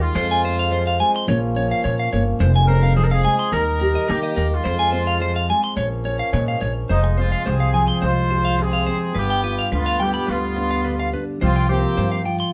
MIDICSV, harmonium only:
0, 0, Header, 1, 2, 480
1, 0, Start_track
1, 0, Key_signature, -4, "minor"
1, 0, Tempo, 562324
1, 140, Time_signature, 4, 2, 24, 8
1, 10696, End_track
2, 0, Start_track
2, 0, Title_t, "Harmonium"
2, 0, Program_c, 0, 20
2, 0, Note_on_c, 0, 51, 72
2, 0, Note_on_c, 0, 55, 70
2, 0, Note_on_c, 0, 58, 81
2, 121, Note_on_c, 0, 56, 73
2, 121, Note_on_c, 0, 60, 83
2, 123, Note_off_c, 0, 58, 0
2, 123, Note_on_c, 0, 53, 74
2, 124, Note_off_c, 0, 51, 0
2, 126, Note_off_c, 0, 55, 0
2, 1078, Note_off_c, 0, 56, 0
2, 1078, Note_off_c, 0, 60, 0
2, 1094, Note_on_c, 0, 61, 82
2, 1096, Note_on_c, 0, 58, 69
2, 2044, Note_off_c, 0, 61, 0
2, 2045, Note_off_c, 0, 58, 0
2, 2050, Note_on_c, 0, 56, 71
2, 2050, Note_on_c, 0, 60, 85
2, 2976, Note_off_c, 0, 53, 0
2, 3001, Note_off_c, 0, 56, 0
2, 3001, Note_off_c, 0, 60, 0
2, 3011, Note_on_c, 0, 58, 87
2, 3014, Note_on_c, 0, 55, 70
2, 3017, Note_on_c, 0, 51, 69
2, 3961, Note_off_c, 0, 58, 0
2, 3963, Note_off_c, 0, 55, 0
2, 3964, Note_off_c, 0, 51, 0
2, 3983, Note_on_c, 0, 56, 71
2, 3984, Note_on_c, 0, 53, 78
2, 3986, Note_on_c, 0, 60, 80
2, 4927, Note_off_c, 0, 56, 0
2, 4929, Note_off_c, 0, 60, 0
2, 4939, Note_on_c, 0, 61, 77
2, 4943, Note_on_c, 0, 58, 67
2, 5879, Note_off_c, 0, 53, 0
2, 5886, Note_off_c, 0, 61, 0
2, 5888, Note_off_c, 0, 58, 0
2, 10696, End_track
0, 0, End_of_file